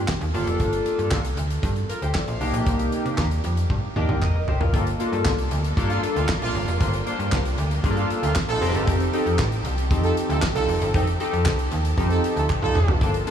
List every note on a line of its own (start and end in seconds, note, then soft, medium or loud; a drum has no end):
0.08 kick medium
0.08 snare loud
0.08 clap medium
0.21 0.32 D#2 medium
0.21 closed hi-hat medium
0.34 0.45 G1 loud
0.34 1.17 A#3 medium
0.34 1.17 D4 medium
0.34 1.17 F4 medium
0.34 1.17 A4 loud
0.34 open hi-hat medium
0.47 0.58 F1 medium
0.47 closed hi-hat medium
0.60 0.82 G1 loud
0.60 kick loud
0.60 closed hi-hat loud
0.73 closed hi-hat medium
0.86 closed hi-hat medium
0.99 1.10 G2 medium
0.99 closed hi-hat soft
1.11 1.33 C2 loud
1.11 kick loud
1.11 snare medium
1.11 clap medium
1.11 clap loud
1.25 closed hi-hat medium
1.37 1.59 D2 medium
1.37 closed hi-hat medium
1.50 closed hi-hat medium
1.63 1.85 G2 loud
1.63 kick loud
1.63 closed hi-hat medium
1.76 closed hi-hat soft
1.89 2.02 F4 medium
1.89 2.02 A#4 medium
1.89 closed hi-hat medium
2.02 2.13 D2 medium
2.02 2.15 G4 medium
2.02 2.15 C5 medium
2.02 closed hi-hat medium
2.14 2.28 A4 medium
2.14 2.27 D5 medium
2.14 kick loud
2.14 snare loud
2.14 clap medium
2.28 2.39 A#1 medium
2.28 2.53 C5 medium
2.28 2.53 F5 medium
2.28 closed hi-hat medium
2.41 2.52 C2 medium
2.41 3.24 A#3 loud
2.41 3.24 D4 medium
2.41 3.24 D#4 medium
2.41 3.24 G4 loud
2.41 open hi-hat medium
2.54 2.65 A#1 loud
2.54 closed hi-hat medium
2.66 2.89 C2 loud
2.66 kick loud
2.66 closed hi-hat loud
2.79 closed hi-hat medium
2.92 closed hi-hat medium
3.05 3.16 C3 medium
3.05 closed hi-hat soft
3.18 3.40 D#2 loud
3.18 kick loud
3.18 snare loud
3.18 clap medium
3.31 closed hi-hat medium
3.44 3.66 F2 medium
3.44 closed hi-hat medium
3.57 closed hi-hat medium
3.70 3.81 G2 loud
3.70 kick loud
3.70 high tom medium
3.96 4.07 D#2 loud
3.96 4.17 A#3 medium
3.96 4.17 D4 medium
3.96 4.17 D#4 medium
3.96 4.17 G4 medium
3.96 mid tom medium
4.09 4.20 C2 loud
4.09 mid tom medium
4.22 4.47 A#4 soft
4.22 4.47 D#5 medium
4.22 kick medium
4.22 clap medium
4.22 mid tom medium
4.35 4.46 F1 medium
4.48 4.59 G1 medium
4.48 4.60 G4 medium
4.48 4.60 C5 medium
4.48 floor tom medium
4.61 4.72 F1 loud
4.61 4.72 F4 medium
4.61 4.85 A#4 medium
4.61 floor tom loud
4.73 4.96 G1 loud
4.73 8.58 G3 medium
4.73 4.84 A#3 medium
4.73 8.58 A#3 medium
4.73 4.84 D4 medium
4.73 8.58 D4 medium
4.73 4.84 F4 medium
4.73 8.58 F4 medium
4.73 6.79 A4 medium
4.73 4.84 A4 medium
4.73 kick loud
4.73 closed hi-hat medium
4.87 closed hi-hat medium
4.99 5.31 A#3 medium
4.99 5.31 D4 medium
4.99 5.31 F4 medium
4.99 5.31 A4 medium
4.99 closed hi-hat medium
5.12 5.23 G2 loud
5.12 closed hi-hat soft
5.25 5.47 C2 loud
5.25 kick loud
5.25 snare loud
5.25 clap medium
5.25 clap loud
5.38 closed hi-hat medium
5.51 5.73 D2 medium
5.51 closed hi-hat medium
5.64 closed hi-hat medium
5.77 5.99 G2 loud
5.77 6.18 A#3 medium
5.77 6.19 D4 medium
5.77 6.19 F4 medium
5.77 6.19 A4 medium
5.77 kick loud
5.77 closed hi-hat medium
5.90 6.01 A#3 medium
5.90 6.01 D4 medium
5.90 6.01 F4 loud
5.90 closed hi-hat soft
6.03 closed hi-hat medium
6.16 6.27 D2 medium
6.16 6.27 A#3 medium
6.16 6.27 D4 medium
6.16 6.27 F4 medium
6.16 closed hi-hat medium
6.28 kick loud
6.28 snare loud
6.28 clap medium
6.42 6.53 A#1 medium
6.42 6.79 A#3 loud
6.42 6.79 D4 loud
6.42 6.79 F4 loud
6.42 closed hi-hat medium
6.55 6.66 G1 loud
6.55 open hi-hat medium
6.68 6.79 F1 loud
6.68 closed hi-hat medium
6.80 7.03 G1 loud
6.80 6.91 A#3 medium
6.80 6.91 D4 medium
6.80 6.91 F4 medium
6.80 12.97 G4 medium
6.80 6.91 C5 medium
6.80 kick loud
6.80 closed hi-hat loud
6.94 closed hi-hat medium
7.06 7.37 A#3 medium
7.06 7.37 D4 medium
7.06 7.38 F4 medium
7.06 7.38 C5 medium
7.06 closed hi-hat medium
7.19 7.30 G2 medium
7.19 closed hi-hat soft
7.32 7.54 C2 loud
7.32 kick loud
7.32 snare loud
7.32 clap medium
7.32 clap loud
7.45 closed hi-hat medium
7.58 7.80 D2 loud
7.58 closed hi-hat medium
7.71 closed hi-hat medium
7.84 8.06 G2 loud
7.84 8.25 A#3 medium
7.84 8.26 D4 medium
7.84 8.26 F4 medium
7.84 7.91 G#4 medium
7.84 kick loud
7.84 closed hi-hat loud
7.91 8.29 A4 loud
7.97 8.08 A#3 medium
7.97 8.08 D4 medium
7.97 8.08 F4 medium
7.97 closed hi-hat soft
8.10 closed hi-hat medium
8.23 8.34 D2 loud
8.23 8.34 A#3 medium
8.23 8.34 D4 loud
8.23 8.34 F4 loud
8.23 closed hi-hat medium
8.35 kick loud
8.35 snare loud
8.35 clap medium
8.49 8.60 A#1 medium
8.49 8.86 D#4 loud
8.49 8.86 F4 loud
8.49 8.86 A4 loud
8.49 closed hi-hat medium
8.61 8.73 F1 loud
8.61 12.97 F3 medium
8.61 9.03 C4 loud
8.61 12.97 C4 medium
8.61 9.03 D#4 medium
8.61 12.97 D#4 medium
8.61 9.03 G4 medium
8.61 9.03 A4 loud
8.61 13.30 A5 medium
8.61 open hi-hat medium
8.75 8.85 G1 loud
8.75 closed hi-hat medium
8.87 9.09 F1 loud
8.87 kick loud
8.87 closed hi-hat loud
9.00 closed hi-hat medium
9.13 9.44 C4 medium
9.13 9.44 D#4 medium
9.13 9.45 G4 medium
9.13 9.45 A4 medium
9.13 closed hi-hat medium
9.26 9.37 F2 medium
9.26 closed hi-hat soft
9.39 9.61 A1 loud
9.39 kick loud
9.39 snare loud
9.39 clap medium
9.39 clap loud
9.52 closed hi-hat medium
9.65 9.92 C2 medium
9.65 closed hi-hat medium
9.78 closed hi-hat medium
9.91 10.13 F2 loud
9.91 10.32 C4 medium
9.91 10.32 D#4 medium
9.91 10.33 G4 medium
9.91 10.33 A4 medium
9.91 kick loud
9.91 closed hi-hat loud
10.04 10.15 D#4 medium
10.04 10.15 F4 medium
10.04 10.15 A4 loud
10.04 closed hi-hat medium
10.17 closed hi-hat medium
10.29 10.40 D2 loud
10.29 10.41 D#4 medium
10.29 10.41 F4 medium
10.29 10.41 A4 loud
10.29 closed hi-hat medium
10.42 kick loud
10.42 snare loud
10.42 clap medium
10.55 10.66 C2 loud
10.55 10.93 D#4 loud
10.55 10.93 F4 loud
10.55 10.93 A4 loud
10.55 closed hi-hat medium
10.68 10.79 F1 medium
10.68 open hi-hat medium
10.81 10.92 G1 loud
10.81 closed hi-hat medium
10.94 11.16 F1 loud
10.94 11.05 C4 medium
10.94 11.05 D#4 medium
10.94 11.05 G4 medium
10.94 11.05 A4 medium
10.94 kick loud
10.94 closed hi-hat loud
11.07 closed hi-hat medium
11.20 11.51 C4 medium
11.20 11.51 D#4 medium
11.20 11.51 G4 medium
11.20 11.52 A4 medium
11.20 closed hi-hat medium
11.33 11.47 F2 loud
11.33 closed hi-hat soft
11.45 11.68 C2 loud
11.45 kick loud
11.45 snare loud
11.45 clap medium
11.45 clap loud
11.59 closed hi-hat medium
11.71 11.94 D#2 loud
11.71 closed hi-hat medium
11.85 closed hi-hat medium
11.98 12.20 F2 loud
11.98 12.39 C4 medium
11.98 12.39 D#4 medium
11.98 12.39 G4 medium
11.98 12.40 A4 medium
11.98 kick loud
11.98 closed hi-hat medium
12.10 12.22 D#4 medium
12.10 12.22 F4 medium
12.10 12.22 A4 medium
12.10 closed hi-hat soft
12.24 closed hi-hat medium
12.36 12.47 D2 medium
12.36 12.48 D#4 medium
12.36 12.48 F4 medium
12.36 12.48 A4 medium
12.36 closed hi-hat medium
12.50 kick loud
12.50 clap medium
12.50 high tom medium
12.62 12.73 C2 loud
12.62 13.00 D#4 loud
12.62 12.99 F4 loud
12.62 13.00 A4 loud
12.62 mid tom medium
12.75 12.86 G1 medium
12.75 mid tom medium
12.88 12.99 F1 medium
12.88 floor tom loud
13.01 13.23 G1 loud
13.01 13.30 G3 medium
13.01 13.11 A#3 medium
13.01 13.30 A#3 medium
13.01 13.12 D4 medium
13.01 13.30 D4 medium
13.01 13.12 F4 medium
13.01 13.30 F4 medium
13.01 13.12 A4 medium
13.01 kick loud
13.01 closed hi-hat medium
13.14 closed hi-hat medium
13.27 13.30 A#3 medium
13.27 13.30 D4 medium
13.27 13.30 F4 medium
13.27 closed hi-hat medium